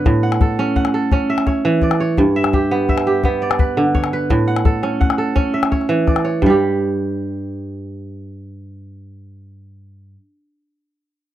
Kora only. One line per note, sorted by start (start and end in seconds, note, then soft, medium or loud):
0.00 0.10 G2 medium
0.00 0.10 D3 medium
0.00 0.86 B3 medium
0.00 0.29 G4 medium
0.00 1.11 B4 medium
0.00 0.85 C#5 medium
0.06 2.23 A2 medium
0.23 0.76 F#5 medium
0.41 0.94 A4 medium
0.59 1.12 C#4 medium
0.76 1.73 F#5 medium
0.94 2.26 A4 medium
1.12 1.89 C#4 medium
1.30 2.33 E5 medium
1.47 2.00 C#5 medium
1.65 2.23 E3 medium
1.83 2.93 D5 medium
2.00 3.15 C#5 medium
2.18 4.35 G2 medium
2.36 2.89 E5 medium
2.54 3.06 G4 medium
2.71 3.24 B3 medium
2.89 3.93 E5 medium
3.07 4.54 G4 medium
3.25 5.11 B3 medium
3.42 4.01 D5 medium
3.60 4.13 B4 medium
3.77 4.35 D3 medium
3.95 5.09 C#5 medium
4.13 5.36 B4 medium
4.30 6.47 A2 medium
4.48 5.00 F#5 medium
4.65 5.18 A4 medium
4.83 5.35 C#4 medium
5.01 5.97 F#5 medium
5.18 6.50 A4 medium
5.36 6.13 C#4 medium
5.54 6.57 E5 medium
5.72 6.24 C#5 medium
5.89 6.47 E3 medium
6.07 7.18 D5 medium
6.25 7.39 C#5 medium
6.42 10.14 G2 medium
6.46 10.18 G3 medium
6.46 10.22 G4 medium